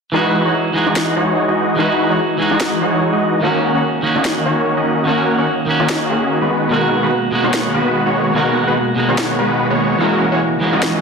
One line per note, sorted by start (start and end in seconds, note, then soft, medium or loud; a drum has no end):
0.12 0.72 E3 medium
0.12 0.43 E3 medium
0.12 3.39 E3 medium
0.12 0.73 G#3 medium
0.12 0.43 G#3 medium
0.12 3.39 G#3 medium
0.12 0.43 D#4 medium
0.12 3.39 D#4 medium
0.12 0.74 D#4 medium
0.12 0.43 F#4 medium
0.12 9.96 F#4 medium
0.12 0.74 F#4 medium
0.12 0.43 B4 medium
0.45 0.53 E3 medium
0.45 0.53 G#3 medium
0.45 0.53 D#4 medium
0.45 0.53 F#4 medium
0.45 0.53 C#5 medium
0.73 1.75 E3 medium
0.73 1.76 G#3 medium
0.73 1.76 D#4 medium
0.77 1.77 F#4 medium
0.86 1.14 E3 medium
0.86 1.14 G#3 medium
0.86 1.14 D#4 medium
0.86 1.14 F#4 medium
0.86 1.14 D#5 loud
0.96 snare loud
1.16 1.45 E3 medium
1.16 1.45 G#3 medium
1.16 1.45 D#4 medium
1.16 1.45 F#4 medium
1.16 1.45 C#5 loud
1.48 1.76 E3 medium
1.48 1.76 G#3 medium
1.48 1.76 D#4 medium
1.48 1.76 F#4 medium
1.48 1.76 D#5 medium
1.76 2.36 E3 medium
1.76 2.07 E3 medium
1.76 2.37 G#3 medium
1.76 2.07 G#3 medium
1.76 2.07 D#4 medium
1.76 2.38 D#4 medium
1.76 2.07 F#4 medium
1.76 2.07 B4 medium
1.80 2.38 F#4 medium
2.10 2.18 E3 medium
2.10 2.18 G#3 medium
2.10 2.18 D#4 medium
2.10 2.18 F#4 medium
2.10 2.18 C#5 medium
2.38 3.39 E3 medium
2.38 3.40 G#3 medium
2.38 3.41 D#4 medium
2.38 3.41 F#4 medium
2.51 2.79 E3 medium
2.51 2.79 G#3 medium
2.51 2.79 D#4 medium
2.51 2.79 F#4 medium
2.51 2.79 D#5 loud
2.60 snare loud
2.81 3.10 E3 medium
2.81 3.10 G#3 medium
2.81 3.10 D#4 medium
2.81 3.10 F#4 medium
2.81 3.10 C#5 loud
3.13 3.40 E3 medium
3.13 3.40 G#3 medium
3.13 3.40 D#4 medium
3.13 3.40 F#4 medium
3.13 3.40 D#5 medium
3.41 4.01 D#3 medium
3.41 3.72 D#3 medium
3.41 6.48 D#3 medium
3.41 4.02 A#3 medium
3.41 3.72 A#3 medium
3.41 11.01 A#3 medium
3.41 3.72 C#4 medium
3.41 6.48 C#4 medium
3.41 4.02 C#4 medium
3.41 3.72 F#4 medium
3.41 3.72 A#4 medium
3.45 4.03 F#4 medium
3.74 3.82 D#3 medium
3.74 3.82 A#3 medium
3.74 3.82 C#4 medium
3.74 3.82 F#4 medium
3.74 3.82 C#5 medium
4.02 5.04 D#3 medium
4.02 5.04 A#3 medium
4.02 5.05 C#4 medium
4.02 5.06 F#4 medium
4.15 4.43 D#3 medium
4.15 4.43 A#3 medium
4.15 4.43 C#4 medium
4.15 4.43 F#4 medium
4.15 4.43 D#5 loud
4.25 snare loud
4.45 4.74 D#3 medium
4.45 4.74 A#3 medium
4.45 4.74 C#4 medium
4.45 4.74 F#4 medium
4.45 4.74 C#5 loud
4.77 5.05 D#3 medium
4.77 5.05 A#3 medium
4.77 5.05 C#4 medium
4.77 5.05 F#4 medium
4.77 5.05 D#5 medium
5.05 5.65 D#3 medium
5.05 5.36 D#3 medium
5.05 5.66 A#3 medium
5.05 5.36 A#3 medium
5.05 5.36 C#4 medium
5.05 5.67 C#4 medium
5.05 5.36 F#4 medium
5.05 5.67 F#4 medium
5.05 5.36 A#4 medium
5.38 5.46 D#3 medium
5.38 5.46 A#3 medium
5.38 5.47 C#4 medium
5.38 5.46 F#4 medium
5.38 5.46 C#5 medium
5.66 6.49 D#3 medium
5.66 6.49 A#3 medium
5.66 6.50 C#4 medium
5.70 6.51 F#4 medium
5.80 6.07 D#3 medium
5.80 6.07 A#3 medium
5.80 6.07 C#4 medium
5.80 6.07 F#4 medium
5.80 6.07 D#5 loud
5.89 snare loud
6.10 6.39 D#3 medium
6.10 6.39 A#3 medium
6.10 6.39 C#4 medium
6.10 6.39 F#4 medium
6.10 6.39 G#4 medium
6.41 6.69 D#3 medium
6.41 6.69 G#3 medium
6.41 6.69 B3 medium
6.41 6.69 F#4 medium
6.41 6.69 B4 medium
6.51 9.97 B2 medium
6.51 11.01 G#3 medium
6.69 7.30 B2 medium
6.69 7.00 D#3 medium
6.69 7.30 G#3 medium
6.69 7.00 G#3 medium
6.69 7.31 A#3 medium
6.69 7.00 B3 medium
6.69 7.00 F#4 medium
6.69 7.00 A#4 medium
6.74 7.32 F#4 medium
7.03 7.11 D#3 medium
7.03 7.11 G#3 medium
7.03 7.11 B3 medium
7.03 7.11 F#4 medium
7.03 7.11 B4 medium
7.31 8.32 B2 medium
7.31 8.33 G#3 medium
7.31 8.34 A#3 medium
7.31 8.34 F#4 medium
7.44 7.72 D#3 medium
7.44 7.72 G#3 medium
7.44 7.72 B3 medium
7.44 7.72 F#4 medium
7.44 7.72 C#5 loud
7.54 snare loud
7.74 8.03 D#3 loud
7.74 8.03 G#3 medium
7.74 8.03 B3 medium
7.74 8.03 F#4 medium
7.74 8.03 B4 loud
8.06 8.34 D#3 medium
8.06 8.34 G#3 medium
8.06 8.34 B3 medium
8.06 8.34 F#4 medium
8.06 8.34 C#5 medium
8.34 8.94 B2 medium
8.34 8.65 D#3 medium
8.34 8.95 G#3 medium
8.34 8.65 G#3 medium
8.34 8.95 A#3 medium
8.34 8.65 B3 medium
8.34 8.65 F#4 medium
8.34 8.96 F#4 medium
8.34 8.65 A#4 medium
8.67 8.75 D#3 medium
8.67 8.75 G#3 medium
8.67 8.75 B3 medium
8.67 8.75 F#4 medium
8.67 8.75 B4 medium
8.95 9.97 B2 medium
8.95 9.98 G#3 medium
8.95 9.98 A#3 medium
8.95 9.99 F#4 medium
9.08 9.36 D#3 medium
9.08 9.36 G#3 medium
9.08 9.36 B3 medium
9.08 9.36 F#4 medium
9.08 9.36 C#5 loud
9.18 snare loud
9.39 9.68 D#3 medium
9.39 9.68 G#3 medium
9.39 9.68 B3 medium
9.39 9.68 F#4 medium
9.39 9.68 B4 loud
9.70 9.98 D#3 medium
9.70 9.98 G#3 medium
9.70 9.98 B3 medium
9.70 9.98 F#4 medium
9.70 9.98 C#5 medium
9.98 10.59 E3 medium
9.98 11.01 E3 medium
9.98 10.29 E3 medium
9.98 10.59 G#3 medium
9.98 10.29 G#3 medium
9.98 10.60 A#3 medium
9.98 10.29 C#4 medium
9.98 10.29 F#4 medium
9.98 11.01 F#4 loud
9.98 10.29 A#4 medium
9.98 riser medium
10.02 10.61 F#4 medium
10.32 10.40 E3 medium
10.32 10.40 G#3 medium
10.32 10.40 C#4 medium
10.32 10.40 F#4 medium
10.32 10.40 C#5 medium
10.60 11.01 E3 medium
10.60 11.01 G#3 medium
10.60 11.01 A#3 medium
10.64 11.01 F#4 medium
10.73 11.01 E3 medium
10.73 11.01 G#3 medium
10.73 11.01 C#4 medium
10.73 11.01 F#4 medium
10.73 11.01 D#5 loud
10.82 snare loud